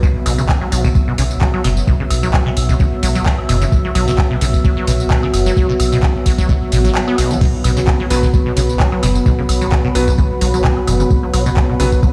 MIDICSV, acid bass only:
0, 0, Header, 1, 2, 480
1, 0, Start_track
1, 0, Tempo, 461538
1, 30, Time_signature, 4, 2, 24, 8
1, 12613, End_track
2, 0, Start_track
2, 0, Title_t, "Acid bass"
2, 0, Program_c, 0, 38
2, 28, Note_on_c, 0, 47, 98
2, 72, Note_off_c, 0, 47, 0
2, 269, Note_on_c, 0, 47, 77
2, 341, Note_off_c, 0, 47, 0
2, 399, Note_on_c, 0, 49, 78
2, 435, Note_off_c, 0, 49, 0
2, 638, Note_on_c, 0, 54, 71
2, 700, Note_off_c, 0, 54, 0
2, 748, Note_on_c, 0, 54, 72
2, 856, Note_off_c, 0, 54, 0
2, 878, Note_on_c, 0, 47, 104
2, 915, Note_off_c, 0, 47, 0
2, 1119, Note_on_c, 0, 47, 72
2, 1180, Note_off_c, 0, 47, 0
2, 1229, Note_on_c, 0, 49, 75
2, 1272, Note_off_c, 0, 49, 0
2, 1469, Note_on_c, 0, 54, 77
2, 1541, Note_off_c, 0, 54, 0
2, 1599, Note_on_c, 0, 54, 75
2, 1690, Note_off_c, 0, 54, 0
2, 1709, Note_on_c, 0, 47, 103
2, 1752, Note_off_c, 0, 47, 0
2, 1949, Note_on_c, 0, 47, 85
2, 2021, Note_off_c, 0, 47, 0
2, 2079, Note_on_c, 0, 49, 74
2, 2115, Note_off_c, 0, 49, 0
2, 2319, Note_on_c, 0, 54, 78
2, 2380, Note_off_c, 0, 54, 0
2, 2429, Note_on_c, 0, 54, 85
2, 2536, Note_off_c, 0, 54, 0
2, 2559, Note_on_c, 0, 47, 101
2, 2596, Note_off_c, 0, 47, 0
2, 2799, Note_on_c, 0, 47, 79
2, 2860, Note_off_c, 0, 47, 0
2, 2909, Note_on_c, 0, 49, 85
2, 2952, Note_off_c, 0, 49, 0
2, 3149, Note_on_c, 0, 54, 70
2, 3221, Note_off_c, 0, 54, 0
2, 3279, Note_on_c, 0, 54, 72
2, 3370, Note_off_c, 0, 54, 0
2, 3389, Note_on_c, 0, 47, 94
2, 3432, Note_off_c, 0, 47, 0
2, 3630, Note_on_c, 0, 47, 79
2, 3701, Note_off_c, 0, 47, 0
2, 3760, Note_on_c, 0, 49, 78
2, 3796, Note_off_c, 0, 49, 0
2, 4000, Note_on_c, 0, 54, 72
2, 4060, Note_off_c, 0, 54, 0
2, 4110, Note_on_c, 0, 54, 78
2, 4217, Note_off_c, 0, 54, 0
2, 4239, Note_on_c, 0, 47, 104
2, 4276, Note_off_c, 0, 47, 0
2, 4480, Note_on_c, 0, 47, 72
2, 4540, Note_off_c, 0, 47, 0
2, 4589, Note_on_c, 0, 49, 71
2, 4632, Note_off_c, 0, 49, 0
2, 4830, Note_on_c, 0, 54, 83
2, 4901, Note_off_c, 0, 54, 0
2, 4960, Note_on_c, 0, 54, 73
2, 5051, Note_off_c, 0, 54, 0
2, 5070, Note_on_c, 0, 47, 97
2, 5113, Note_off_c, 0, 47, 0
2, 5310, Note_on_c, 0, 47, 82
2, 5381, Note_off_c, 0, 47, 0
2, 5440, Note_on_c, 0, 49, 79
2, 5476, Note_off_c, 0, 49, 0
2, 5680, Note_on_c, 0, 54, 78
2, 5740, Note_off_c, 0, 54, 0
2, 5790, Note_on_c, 0, 54, 84
2, 5897, Note_off_c, 0, 54, 0
2, 5919, Note_on_c, 0, 47, 99
2, 5955, Note_off_c, 0, 47, 0
2, 6159, Note_on_c, 0, 47, 77
2, 6220, Note_off_c, 0, 47, 0
2, 6270, Note_on_c, 0, 49, 83
2, 6312, Note_off_c, 0, 49, 0
2, 6509, Note_on_c, 0, 54, 73
2, 6581, Note_off_c, 0, 54, 0
2, 6639, Note_on_c, 0, 54, 79
2, 6730, Note_off_c, 0, 54, 0
2, 6749, Note_on_c, 0, 47, 105
2, 6792, Note_off_c, 0, 47, 0
2, 6990, Note_on_c, 0, 47, 74
2, 7061, Note_off_c, 0, 47, 0
2, 7119, Note_on_c, 0, 54, 99
2, 7180, Note_off_c, 0, 54, 0
2, 7359, Note_on_c, 0, 59, 79
2, 7450, Note_off_c, 0, 59, 0
2, 7469, Note_on_c, 0, 47, 75
2, 7599, Note_on_c, 0, 54, 75
2, 7615, Note_off_c, 0, 47, 0
2, 7660, Note_off_c, 0, 54, 0
2, 7709, Note_on_c, 0, 47, 98
2, 7752, Note_off_c, 0, 47, 0
2, 7949, Note_on_c, 0, 47, 77
2, 8021, Note_off_c, 0, 47, 0
2, 8079, Note_on_c, 0, 49, 79
2, 8115, Note_off_c, 0, 49, 0
2, 8318, Note_on_c, 0, 54, 69
2, 8379, Note_off_c, 0, 54, 0
2, 8429, Note_on_c, 0, 54, 75
2, 8536, Note_off_c, 0, 54, 0
2, 8558, Note_on_c, 0, 47, 102
2, 8595, Note_off_c, 0, 47, 0
2, 8799, Note_on_c, 0, 47, 75
2, 8860, Note_off_c, 0, 47, 0
2, 8909, Note_on_c, 0, 49, 71
2, 8952, Note_off_c, 0, 49, 0
2, 9149, Note_on_c, 0, 54, 80
2, 9221, Note_off_c, 0, 54, 0
2, 9278, Note_on_c, 0, 54, 73
2, 9370, Note_off_c, 0, 54, 0
2, 9389, Note_on_c, 0, 47, 101
2, 9432, Note_off_c, 0, 47, 0
2, 9629, Note_on_c, 0, 47, 82
2, 9701, Note_off_c, 0, 47, 0
2, 9759, Note_on_c, 0, 49, 72
2, 9796, Note_off_c, 0, 49, 0
2, 9998, Note_on_c, 0, 54, 80
2, 10060, Note_off_c, 0, 54, 0
2, 10109, Note_on_c, 0, 54, 83
2, 10216, Note_off_c, 0, 54, 0
2, 10239, Note_on_c, 0, 47, 96
2, 10276, Note_off_c, 0, 47, 0
2, 10479, Note_on_c, 0, 47, 79
2, 10540, Note_off_c, 0, 47, 0
2, 10589, Note_on_c, 0, 49, 88
2, 10632, Note_off_c, 0, 49, 0
2, 10829, Note_on_c, 0, 54, 73
2, 10901, Note_off_c, 0, 54, 0
2, 10959, Note_on_c, 0, 54, 75
2, 11050, Note_off_c, 0, 54, 0
2, 11069, Note_on_c, 0, 47, 96
2, 11112, Note_off_c, 0, 47, 0
2, 11309, Note_on_c, 0, 47, 78
2, 11381, Note_off_c, 0, 47, 0
2, 11439, Note_on_c, 0, 49, 78
2, 11475, Note_off_c, 0, 49, 0
2, 11679, Note_on_c, 0, 54, 74
2, 11740, Note_off_c, 0, 54, 0
2, 11790, Note_on_c, 0, 54, 76
2, 11897, Note_off_c, 0, 54, 0
2, 11919, Note_on_c, 0, 47, 108
2, 11956, Note_off_c, 0, 47, 0
2, 12159, Note_on_c, 0, 47, 76
2, 12220, Note_off_c, 0, 47, 0
2, 12270, Note_on_c, 0, 49, 76
2, 12312, Note_off_c, 0, 49, 0
2, 12509, Note_on_c, 0, 54, 83
2, 12581, Note_off_c, 0, 54, 0
2, 12613, End_track
0, 0, End_of_file